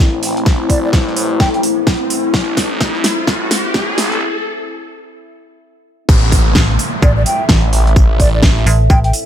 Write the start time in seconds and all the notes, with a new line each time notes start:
Already playing: A3 C4 E4 A4 C5 E5, riser
0.00 A1
0.23 A1, open hi-hat
0.37 closed hi-hat
0.46 A1, kick, snare, tambourine
0.70 A1 D5, kick, open hi-hat, tambourine
0.84 D5
0.93 A1, kick, snare, tambourine
1.07 snare
1.16 A1, open hi-hat, tambourine
1.40 A1 G5, kick, snare, tambourine
1.54 G5, closed hi-hat
1.63 open hi-hat, tambourine
1.87 kick, snare, tambourine
2.10 open hi-hat, tambourine
2.34 A1, kick, snare, tambourine
2.57 A1, kick, snare, open hi-hat, tambourine
2.81 A1, kick, snare, tambourine
2.95 snare
3.04 snare, open hi-hat, tambourine
3.27 A1, kick, snare, tambourine
3.51 snare, open hi-hat, tambourine
3.74 A1, kick, snare, tambourine
3.98 A1, snare, open hi-hat
4.12 closed hi-hat
6.09 A1 A3 E4 C5, kick, crash, tambourine, downlifter
6.32 A1, kick, open hi-hat, tambourine
6.55 A1, kick, snare, tambourine
6.62 E5
6.70 A4, snare
6.79 open hi-hat, tambourine
7.02 A1 D5, kick, tambourine
7.17 D5
7.26 G5, open hi-hat, tambourine
7.49 A1, kick, snare, tambourine
7.73 A1, open hi-hat
7.87 closed hi-hat
7.96 A1, kick, tambourine
8.20 A1 D5, kick, open hi-hat, tambourine
8.34 D5
8.43 A1, kick, snare, tambourine
8.57 snare
8.66 A1, open hi-hat, tambourine
8.90 A1 G5, kick, tambourine
9.04 G5, closed hi-hat
9.13 open hi-hat, tambourine